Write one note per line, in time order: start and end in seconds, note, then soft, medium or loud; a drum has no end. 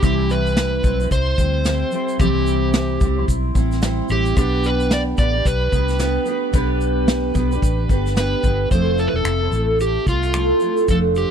0.02 0.80 C2 loud
0.02 0.84 C3 medium
0.02 0.84 E3 medium
0.02 0.82 G3 medium
0.02 0.83 C4 medium
0.02 0.84 E4 loud
0.02 0.31 G4 medium
0.02 kick loud
0.02 shaker medium
0.30 1.12 B4 medium
0.30 shaker medium
0.47 shaker soft
0.57 snare loud
0.57 shaker medium
0.83 1.06 B1 medium
0.83 1.00 G3 medium
0.83 1.00 C4 medium
0.83 0.99 E4 medium
0.83 0.98 C5 medium
0.83 kick loud
0.83 shaker medium
0.99 1.36 G3 soft
0.99 1.38 C4 soft
0.99 1.38 E4 soft
0.99 1.38 C5 medium
0.99 shaker medium
1.11 1.33 C2 medium
1.11 2.16 C5 loud
1.11 kick medium
1.11 shaker medium
1.37 1.83 D2 medium
1.37 1.63 G3 medium
1.37 1.65 C4 medium
1.37 1.66 E4 medium
1.37 1.67 C5 medium
1.37 kick medium
1.37 shaker medium
1.64 1.91 G3 medium
1.64 1.92 C4 medium
1.64 1.93 E4 medium
1.64 1.94 C5 medium
1.64 snare loud
1.64 shaker medium
1.91 2.19 G3 medium
1.91 2.20 C4 medium
1.91 2.20 E4 medium
1.91 shaker soft
1.96 2.21 C5 medium
2.08 shaker soft
2.19 2.97 C2 loud
2.19 3.01 C3 medium
2.19 3.01 E3 medium
2.19 3.01 G3 medium
2.19 3.01 C4 medium
2.19 3.02 E4 medium
2.19 3.25 G4 medium
2.19 3.02 C5 medium
2.19 kick loud
2.19 shaker medium
2.47 shaker medium
2.74 snare loud
2.74 shaker medium
3.01 3.23 C2 medium
3.01 3.17 G3 medium
3.01 3.18 C4 medium
3.01 3.17 E4 medium
3.01 3.16 C5 medium
3.01 kick loud
3.01 shaker medium
3.17 3.53 G3 soft
3.17 3.55 C4 medium
3.17 3.56 E4 medium
3.17 3.55 C5 medium
3.28 3.50 B1 medium
3.28 kick medium
3.28 shaker medium
3.55 4.00 A1 medium
3.55 3.80 G3 medium
3.55 3.82 C4 medium
3.55 3.83 E4 medium
3.55 3.84 C5 medium
3.55 kick medium
3.55 shaker medium
3.72 snare soft
3.72 shaker medium
3.82 4.08 G3 medium
3.82 4.09 C4 medium
3.82 4.10 E4 medium
3.82 4.11 C5 medium
3.82 snare loud
3.82 shaker medium
4.09 4.32 A1 loud
4.09 4.36 G3 medium
4.09 4.36 C4 medium
4.09 4.37 E4 medium
4.09 4.37 G4 medium
4.09 4.38 C5 medium
4.09 shaker medium
4.25 shaker soft
4.36 5.14 B1 loud
4.36 5.16 B3 medium
4.36 5.17 D4 medium
4.36 5.19 G4 medium
4.36 4.65 G4 loud
4.36 5.19 B4 medium
4.36 kick loud
4.36 shaker medium
4.64 4.93 B4 medium
4.64 shaker medium
4.80 shaker soft
4.91 5.00 D5 loud
4.91 snare loud
4.91 shaker medium
5.17 5.40 A1 medium
5.17 5.34 B3 medium
5.17 5.35 D4 medium
5.17 5.34 G4 medium
5.17 5.32 B4 medium
5.17 5.46 D5 loud
5.17 kick loud
5.17 shaker medium
5.33 5.71 D4 soft
5.33 5.73 G4 medium
5.33 5.72 B4 medium
5.45 5.67 B1 loud
5.45 8.13 B4 loud
5.45 kick medium
5.45 shaker medium
5.71 6.17 C2 medium
5.71 5.97 B3 medium
5.71 5.99 D4 medium
5.71 6.00 G4 medium
5.71 6.01 B4 medium
5.71 kick medium
5.71 shaker medium
5.89 snare soft
5.89 shaker medium
5.99 6.24 B3 medium
5.99 6.25 D4 medium
5.99 6.26 G4 medium
5.99 6.28 B4 medium
5.99 snare loud
5.99 shaker medium
6.25 6.51 B3 medium
6.25 6.52 D4 medium
6.25 6.53 G4 medium
6.25 6.54 B4 medium
6.25 shaker medium
6.53 7.31 B1 loud
6.53 7.32 B3 medium
6.53 7.34 D4 medium
6.53 7.35 G4 loud
6.53 7.36 B4 loud
6.53 kick loud
6.53 shaker medium
6.81 shaker medium
7.08 snare loud
7.08 shaker medium
7.34 7.57 B1 medium
7.34 7.51 B3 medium
7.34 7.51 D4 medium
7.34 7.51 G4 medium
7.34 7.49 B4 medium
7.34 kick loud
7.34 shaker medium
7.50 7.88 D4 medium
7.50 7.89 G4 medium
7.50 7.89 B4 medium
7.50 shaker medium
7.62 7.85 A1 loud
7.62 kick medium
7.62 shaker medium
7.88 8.34 G1 medium
7.88 8.14 B3 medium
7.88 8.15 D4 medium
7.88 8.17 G4 medium
7.88 8.17 B4 medium
7.88 kick medium
7.88 shaker soft
8.06 snare soft
8.06 shaker medium
8.15 8.41 B3 medium
8.15 8.42 D4 medium
8.15 8.44 G4 medium
8.15 8.71 B4 medium
8.15 8.45 B4 medium
8.15 snare loud
8.15 shaker medium
8.43 8.66 G1 medium
8.43 8.70 B3 medium
8.43 8.71 D4 medium
8.43 8.71 G4 medium
8.43 8.72 B4 medium
8.43 kick medium
8.43 shaker medium
8.70 9.07 F1 medium
8.70 9.46 F3 medium
8.70 9.52 A3 medium
8.70 9.44 C4 medium
8.70 9.42 E4 medium
8.70 9.40 A4 medium
8.70 8.99 C5 medium
8.70 kick loud
8.70 shaker medium
8.98 9.07 A4 medium
8.98 shaker soft
9.07 9.15 B4 medium
9.14 9.23 E1 medium
9.14 9.81 A4 medium
9.25 9.47 F1 medium
9.25 finger snap medium
9.25 shaker medium
9.41 9.52 C4 soft
9.41 9.53 E4 soft
9.41 9.52 A4 soft
9.52 9.97 A1 medium
9.52 10.06 A3 medium
9.52 10.07 C4 medium
9.52 10.08 E4 medium
9.52 shaker soft
9.56 10.10 A4 medium
9.80 10.08 G4 medium
9.80 shaker medium
10.06 10.51 C2 medium
10.06 10.33 A3 medium
10.06 10.34 C4 medium
10.06 10.35 E4 medium
10.06 10.85 F4 medium
10.06 10.36 A4 medium
10.06 kick medium
10.06 shaker soft
10.23 finger snap soft
10.23 shaker soft
10.34 10.60 A3 medium
10.34 10.61 C4 medium
10.34 10.62 E4 medium
10.34 10.63 A4 medium
10.34 finger snap loud
10.34 shaker medium
10.60 10.88 A3 medium
10.60 10.89 C4 medium
10.60 10.90 E4 medium
10.60 shaker soft
10.65 10.89 A4 medium
10.77 shaker soft
10.88 11.24 F1 medium
10.88 11.31 F3 medium
10.88 11.31 A3 medium
10.88 11.31 D4 medium
10.88 11.31 A4 medium
10.88 10.98 A4 medium
10.88 11.31 C5 medium
10.88 kick medium
10.88 shaker medium
11.15 11.31 G4 medium
11.15 shaker soft